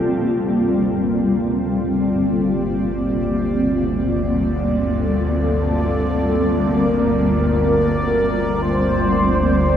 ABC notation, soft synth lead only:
X:1
M:4/4
L:1/8
Q:1/4=49
K:Gm
V:1 name="Soft synth lead"
A B2 A G3 z | A3 B B2 c2 |]